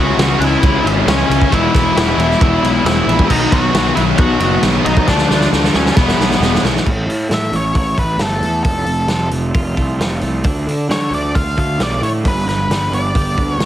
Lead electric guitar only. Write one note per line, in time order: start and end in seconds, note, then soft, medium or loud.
0.00 0.39 F#4 medium
0.00 0.44 F#5 loud
0.44 0.84 E4 medium
0.44 0.86 E5 loud
1.08 1.49 C#4 medium
1.08 1.51 C#5 medium
1.54 2.38 E4 medium
1.54 2.42 E5 loud
2.42 2.83 E4 medium
2.42 2.85 E5 loud
2.86 3.27 E4 medium
2.86 3.32 E5 loud
3.31 3.51 D#4 medium
3.31 3.51 D#5 loud
3.52 3.94 F#4 medium
3.52 3.95 F#5 loud
3.95 4.01 E4 medium
3.95 4.02 E5 loud
4.18 4.60 F#4 medium
4.18 4.60 F#5 loud
4.85 5.06 D#4 medium
4.85 5.08 D#5 loud
5.08 5.49 D4 medium
5.08 5.49 D5 medium
5.76 5.96 C#4 medium
5.76 5.96 C#5 loud
5.97 6.60 B3 medium
5.97 6.60 B4 loud
7.34 7.55 E5 medium
7.56 7.76 C#5 medium
7.78 7.99 C#5 medium
7.99 8.22 B4 medium
8.21 8.63 A4 medium
8.64 9.28 A4 medium
10.91 11.14 C#5 medium
11.14 11.37 D5 medium
11.35 11.56 F5 medium
11.59 11.80 F5 medium
11.83 12.03 D5 medium
12.03 12.09 C#5 medium
12.28 12.48 B4 medium
12.49 12.94 B4 medium
12.95 13.53 D5 medium
13.53 13.65 C#5 medium